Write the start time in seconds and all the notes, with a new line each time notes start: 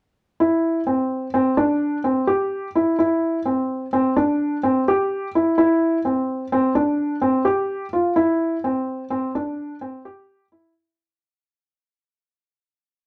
0.40 E4
0.87 C4
1.34 C4
1.57 D4
2.04 C4
2.27 G4
2.75 E4
2.99 E4
3.45 C4
3.93 C4
4.16 D4
4.63 C4
4.88 G4
5.35 E4
5.58 E4
6.05 C4
6.52 C4
6.75 D4
7.22 C4
7.45 G4
7.93 F4
8.16 E4
8.64 C4
9.10 C4
9.35 D4
9.81 C4
10.05 G4
10.52 E4